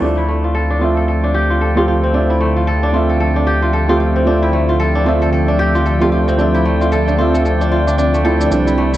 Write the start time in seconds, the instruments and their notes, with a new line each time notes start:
Already playing: kora A3 E4 A4 C5
0.00 sub bass D2, analog synth pad D3, felt piano F3 A3 C4 E5, kora D4, synth texture G5
0.17 kora E4, shaker
0.28 kora A3
0.34 analog synth pad C4
0.44 kora F4, shaker
0.55 kora A4, shaker
0.70 kora D4
0.77 felt piano F3, analog synth pad E5
0.81 felt piano A3 C4 E5, kora F4
0.97 kora A4, shaker
1.08 analog synth pad F3, kora A4, shaker
1.24 kora D4
1.29 analog synth pad D5
1.34 kora G4
1.50 kora F4, shaker
1.61 kora A4, shaker
1.75 felt piano F3 A3 C4 G4, kora F4
1.88 kora F4
2.04 kora C4, shaker
2.12 felt piano F3 A3 C4, kora D4, shaker
2.16 felt piano E5
2.30 kora E4, shaker
2.41 kora A3
2.56 kora F4, shaker
2.67 kora A4, shaker
2.83 kora D4, shaker
2.91 felt piano F3 A3 C4 E5, kora F4
3.09 kora A4, shaker
3.20 kora A4, shaker
3.36 kora D4, shaker
3.47 kora G4
3.62 kora F4, shaker
3.73 kora A4, shaker
3.88 felt piano F3 A3 C4 G4, kora F4, shaker
4.00 kora F4
4.16 kora C4, shaker
4.25 felt piano F3 A3 C4 E5, kora D4, shaker
4.42 kora E4, shaker
4.53 kora A3
4.69 kora F4, shaker
4.80 kora A4, shaker
4.95 kora D4, shaker
5.04 felt piano F3 A3 C4, kora F4
5.08 felt piano E5
5.22 kora A4, shaker
5.33 kora A4, shaker
5.48 kora D4, shaker
5.59 kora G4
5.75 kora F4, shaker
5.86 kora A4, shaker
6.00 felt piano F3 A3 C4 G4, kora F4, shaker
6.12 kora F4
6.28 kora C4, shaker
6.37 felt piano F3 A3 C4 E5, kora D4, shaker
6.54 kora E4, shaker
6.65 kora A3
6.81 kora F4, shaker
6.92 kora A4, shaker
7.08 kora D4, shaker
7.17 felt piano F3 A3 C4, kora F4
7.21 felt piano E5
7.34 kora A4, shaker
7.45 kora A4, shaker
7.61 kora D4, shaker
7.72 kora F4
7.87 kora D4, shaker
7.98 kora D4, shaker
8.14 kora A3, shaker
8.24 felt piano F3 A3 C4 E4, kora A4
8.41 kora D4, shaker
8.49 sub bass C2, analog synth pad C3, felt piano E3 G3 C4, kora D4, shaker
8.53 felt piano D4
8.67 kora E4, shaker
8.78 kora A3
8.93 kora E4, shaker